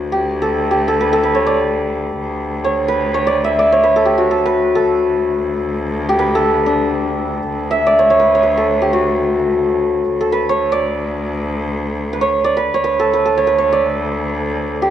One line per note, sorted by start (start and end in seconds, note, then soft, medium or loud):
0.00 2.19 D2 medium
0.00 0.18 F#4 medium
0.00 0.32 A4 medium
0.00 1.00 B4 medium
0.00 0.70 C#5 medium
0.12 0.70 G4 medium
0.42 0.87 A4 medium
0.71 3.85 G4 medium
0.88 1.12 A4 medium
1.01 1.23 B4 medium
1.13 3.96 A4 medium
1.23 2.88 B4 medium
1.35 1.53 C#5 medium
1.47 2.70 D5 medium
2.20 4.84 D2 medium
2.64 3.14 C#5 medium
2.88 3.83 B4 medium
3.14 3.33 C#5 medium
3.27 3.59 D5 medium
3.44 5.74 E5 medium
3.59 3.78 D5 medium
3.72 6.28 C#5 medium
3.83 4.45 B4 medium
3.96 4.30 A4 medium
4.05 4.24 G4 medium
4.18 6.15 F#4 medium
4.31 4.75 A4 medium
4.46 6.18 B4 medium
4.75 6.35 A4 medium
4.84 7.49 D2 medium
6.09 8.81 G4 medium
6.19 8.19 B4 medium
6.35 8.57 A4 medium
6.66 8.05 D4 medium
7.50 10.13 D2 medium
7.71 10.00 E5 medium
7.87 8.05 D5 medium
7.99 8.10 C#5 medium
8.10 8.34 C#5 medium
8.20 8.43 B4 medium
8.35 10.49 C#5 medium
8.43 10.32 B4 medium
8.57 10.20 A4 medium
8.82 8.99 G4 medium
8.93 12.18 F#4 medium
10.14 12.79 D2 medium
10.21 12.99 A4 medium
10.32 12.12 B4 medium
10.49 10.78 C#5 medium
10.72 12.27 D5 medium
12.13 12.56 B4 medium
12.21 12.50 C#5 medium
12.44 12.80 D5 medium
12.57 12.84 B4 medium
12.74 13.37 C#5 medium
12.80 14.90 D2 medium
12.84 13.13 B4 medium
13.00 13.25 A4 medium
13.13 13.47 B4 medium
13.26 14.90 A4 medium
13.38 13.58 C#5 medium
13.47 14.90 B4 medium
13.58 13.79 C#5 medium
13.73 14.90 D5 medium
14.82 14.90 G4 medium